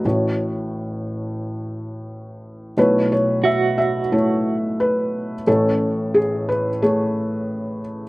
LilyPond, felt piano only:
<<
  \new Staff \with { instrumentName = "Felt piano" } { \time 4/4 \key b \mixolydian \tempo 4 = 89 << { r1 | b'8 cis''8 e''8 e''8 r4 b'4 | a'4 gis'8 b'8 cis''4. r8 | } \\ { <a fis' cis''>1 | <a e' cis''>2 <a e' cis''>2 | <a cis' e' cis''>2 <a gis'>2 | } >> }
  \new Staff \with { instrumentName = "Felt piano" } { \clef bass \time 4/4 \key b \mixolydian <a,, a,>1 | <b,, b,>1 | <a,, a,>1 | }
>>